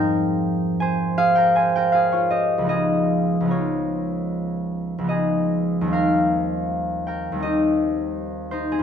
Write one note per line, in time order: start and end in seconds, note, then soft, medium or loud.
0.00 2.66 G#2 medium
0.00 2.60 F3 medium
0.00 2.69 C4 medium
0.00 2.65 D#4 medium
0.00 1.17 G#4 medium
0.00 1.36 A#4 medium
0.00 0.81 C5 loud
0.00 2.19 D#5 loud
0.00 1.16 F5 loud
0.00 1.34 G5 loud
0.80 1.55 C5 medium
0.80 1.54 G#5 medium
1.18 1.93 G#4 medium
1.18 1.91 F5 loud
1.35 1.76 A#4 medium
1.35 1.66 G5 medium
1.56 2.72 C5 medium
1.56 1.86 G#5 medium
1.76 2.73 A#4 medium
1.76 2.05 G5 medium
1.92 2.69 G#4 medium
1.92 2.23 F5 medium
2.12 3.50 F4 medium
2.12 2.43 C#5 medium
2.30 2.72 G4 medium
2.30 2.68 D#5 medium
2.58 3.39 C#2 medium
2.58 3.41 F3 soft
2.64 3.44 B3 soft
2.64 3.46 D#4 soft
2.69 5.09 G#4 medium
2.69 5.08 D#5 medium
3.41 4.97 C#2 soft
3.41 5.00 F3 soft
3.46 5.03 B3 soft
3.46 5.05 D#4 soft
3.51 7.41 F4 medium
3.51 5.94 C#5 medium
4.98 5.88 C#2 soft
4.98 8.83 F3 soft
5.04 5.91 B3 soft
5.04 5.89 D#4 soft
5.09 5.94 G#4 medium
5.09 7.41 D#5 medium
5.81 7.31 D#2 medium
5.81 7.33 G3 soft
5.87 7.36 C4 soft
5.87 7.39 D#4 soft
5.93 7.07 A#4 medium
5.93 8.83 F5 medium
7.07 8.83 A#4 medium
7.07 8.83 G5 medium
7.32 8.83 D#2 medium
7.32 8.80 G3 soft
7.38 8.71 C4 soft
7.38 8.51 D#4 soft
7.43 8.83 G4 medium
7.43 8.83 D#5 medium
8.51 8.83 D#4 medium
8.51 8.83 C5 medium
8.72 8.83 C4 medium
8.72 8.83 G#4 medium
8.79 8.83 F2 medium